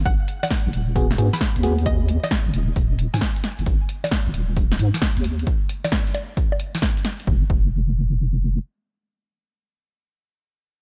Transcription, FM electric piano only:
X:1
M:4/4
L:1/8
Q:"Swing 16ths" 1/4=133
K:Ab
V:1 name="FM electric piano"
z4 [_C_GA] [CGA] z [CGA] | z8 | z8 | z8 |
z8 | z8 |]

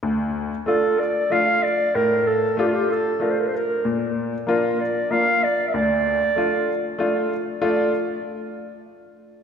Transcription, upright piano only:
X:1
M:3/4
L:1/8
Q:1/4=95
K:Dm
V:1 name="Upright piano"
D,,2 [A,DF] z [A,DF] z | A,,2 [A,DF] z [A,DF] z | B,,2 [B,DF] z [B,DF] z | D,,2 [A,DF] z [A,DF] z |
[A,DF] z4 z |]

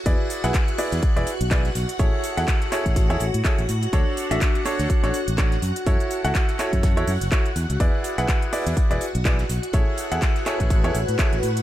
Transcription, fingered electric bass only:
X:1
M:4/4
L:1/16
Q:"Swing 16ths" 1/4=124
K:A
V:1 name="Fingered electric bass" clef=bass
E,, z2 B,,, z3 E,, z E,,, z B,,,2 z B,,, z | A,,, z2 E,, z3 A,,,2 E,, A,,, A,, z A,,, A,, z | D,, z2 A,,, z3 D,, z A,,, z A,,,2 z F,, z | F,, z2 C,, z3 F,,2 E,, F,, F,,, z2 E,, C,, |
E,, z2 B,,, z3 E,, z E,,, z B,,,2 z B,,, z | A,,, z2 E,, z3 A,,,2 E,, A,,, A,, z A,,, A,, z |]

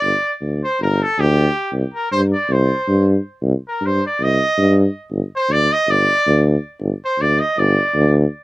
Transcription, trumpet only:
X:1
M:9/8
L:1/8
Q:3/8=106
K:Gm
V:1 name="Trumpet"
d2 z c B A G3 | z B c d c3 z2 | z B c d e3 z2 | z c d e d3 z2 |
z c d e d3 z2 |]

